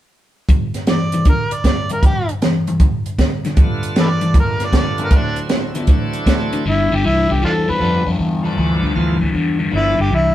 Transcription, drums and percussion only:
0.49 kick, closed hi-hat
0.74 snare, closed hi-hat
0.87 snare, closed hi-hat
1.12 closed hi-hat
1.25 kick, closed hi-hat
1.51 closed hi-hat
1.64 kick, snare, closed hi-hat
1.89 closed hi-hat
2.03 kick, closed hi-hat
2.29 closed hi-hat
2.42 snare, closed hi-hat
2.67 closed hi-hat
2.80 kick, closed hi-hat
3.06 closed hi-hat
3.19 kick, snare, closed hi-hat
3.45 snare, closed hi-hat
3.57 kick, closed hi-hat
3.83 closed hi-hat
3.96 snare, closed hi-hat
4.21 closed hi-hat
4.34 kick, closed hi-hat
4.60 snare, closed hi-hat
4.73 kick, snare, closed hi-hat
4.98 closed hi-hat
5.11 kick, snare, closed hi-hat
5.36 closed hi-hat
5.49 snare, closed hi-hat
5.75 closed hi-hat
5.87 kick, closed hi-hat
6.13 closed hi-hat
6.26 kick, snare, closed hi-hat
6.53 closed hi-hat

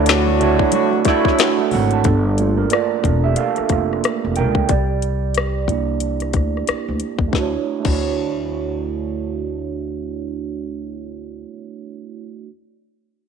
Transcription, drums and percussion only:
0.06 finger snap, snare, closed hi-hat
0.27 muted conga, high conga
0.39 closed hi-hat, low conga
0.59 kick
0.72 closed hi-hat, high conga
0.93 muted conga
1.05 kick, snare, closed hi-hat, high conga
1.25 kick, snare
1.39 finger snap, snare, closed hi-hat, muted conga
1.58 muted conga
1.71 open hi-hat, low conga
1.91 closed hi-hat
2.04 kick, closed hi-hat
2.38 closed hi-hat
2.70 cross-stick, closed hi-hat
3.04 kick, closed hi-hat
3.36 closed hi-hat
3.56 cross-stick, closed hi-hat
3.69 kick, cross-stick, closed hi-hat
3.93 cross-stick
4.04 cross-stick, closed hi-hat
4.36 closed hi-hat
4.55 kick
4.69 kick, closed hi-hat
5.02 closed hi-hat
5.34 cross-stick, closed hi-hat
5.68 kick, closed hi-hat
6.00 closed hi-hat
6.20 cross-stick, closed hi-hat
6.33 kick, cross-stick, closed hi-hat
6.57 cross-stick
6.67 cross-stick, closed hi-hat
7.00 closed hi-hat
7.19 kick
7.33 kick, snare
7.85 kick, crash

